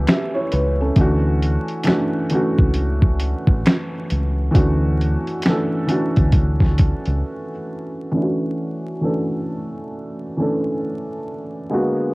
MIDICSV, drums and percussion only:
0, 0, Header, 1, 2, 480
1, 0, Start_track
1, 0, Key_signature, 2, "major"
1, 0, Tempo, 895522
1, 518, Time_signature, 4, 2, 24, 8
1, 6508, End_track
2, 0, Start_track
2, 0, Title_t, "Drums"
2, 39, Note_on_c, 9, 26, 68
2, 40, Note_on_c, 9, 42, 78
2, 45, Note_on_c, 9, 38, 105
2, 93, Note_off_c, 9, 26, 0
2, 94, Note_off_c, 9, 42, 0
2, 99, Note_off_c, 9, 38, 0
2, 277, Note_on_c, 9, 42, 60
2, 331, Note_off_c, 9, 42, 0
2, 515, Note_on_c, 9, 42, 79
2, 517, Note_on_c, 9, 36, 115
2, 568, Note_off_c, 9, 42, 0
2, 570, Note_off_c, 9, 36, 0
2, 764, Note_on_c, 9, 42, 52
2, 817, Note_off_c, 9, 42, 0
2, 902, Note_on_c, 9, 42, 35
2, 955, Note_off_c, 9, 42, 0
2, 983, Note_on_c, 9, 42, 78
2, 992, Note_on_c, 9, 26, 73
2, 1003, Note_on_c, 9, 38, 100
2, 1037, Note_off_c, 9, 42, 0
2, 1045, Note_off_c, 9, 26, 0
2, 1056, Note_off_c, 9, 38, 0
2, 1232, Note_on_c, 9, 42, 70
2, 1285, Note_off_c, 9, 42, 0
2, 1386, Note_on_c, 9, 36, 88
2, 1440, Note_off_c, 9, 36, 0
2, 1468, Note_on_c, 9, 42, 82
2, 1521, Note_off_c, 9, 42, 0
2, 1619, Note_on_c, 9, 36, 84
2, 1673, Note_off_c, 9, 36, 0
2, 1713, Note_on_c, 9, 42, 62
2, 1767, Note_off_c, 9, 42, 0
2, 1861, Note_on_c, 9, 36, 91
2, 1915, Note_off_c, 9, 36, 0
2, 1960, Note_on_c, 9, 26, 72
2, 1961, Note_on_c, 9, 42, 86
2, 1966, Note_on_c, 9, 38, 114
2, 2014, Note_off_c, 9, 26, 0
2, 2015, Note_off_c, 9, 42, 0
2, 2020, Note_off_c, 9, 38, 0
2, 2199, Note_on_c, 9, 42, 60
2, 2252, Note_off_c, 9, 42, 0
2, 2439, Note_on_c, 9, 36, 113
2, 2439, Note_on_c, 9, 42, 85
2, 2492, Note_off_c, 9, 36, 0
2, 2492, Note_off_c, 9, 42, 0
2, 2686, Note_on_c, 9, 42, 51
2, 2740, Note_off_c, 9, 42, 0
2, 2826, Note_on_c, 9, 42, 33
2, 2880, Note_off_c, 9, 42, 0
2, 2906, Note_on_c, 9, 42, 83
2, 2912, Note_on_c, 9, 26, 73
2, 2925, Note_on_c, 9, 38, 105
2, 2960, Note_off_c, 9, 42, 0
2, 2966, Note_off_c, 9, 26, 0
2, 2979, Note_off_c, 9, 38, 0
2, 3155, Note_on_c, 9, 42, 66
2, 3209, Note_off_c, 9, 42, 0
2, 3304, Note_on_c, 9, 42, 33
2, 3308, Note_on_c, 9, 36, 87
2, 3358, Note_off_c, 9, 42, 0
2, 3361, Note_off_c, 9, 36, 0
2, 3390, Note_on_c, 9, 42, 80
2, 3391, Note_on_c, 9, 36, 90
2, 3443, Note_off_c, 9, 42, 0
2, 3445, Note_off_c, 9, 36, 0
2, 3540, Note_on_c, 9, 36, 83
2, 3550, Note_on_c, 9, 38, 35
2, 3594, Note_off_c, 9, 36, 0
2, 3603, Note_off_c, 9, 38, 0
2, 3634, Note_on_c, 9, 42, 62
2, 3642, Note_on_c, 9, 36, 80
2, 3688, Note_off_c, 9, 42, 0
2, 3695, Note_off_c, 9, 36, 0
2, 3781, Note_on_c, 9, 42, 35
2, 3835, Note_off_c, 9, 42, 0
2, 6508, End_track
0, 0, End_of_file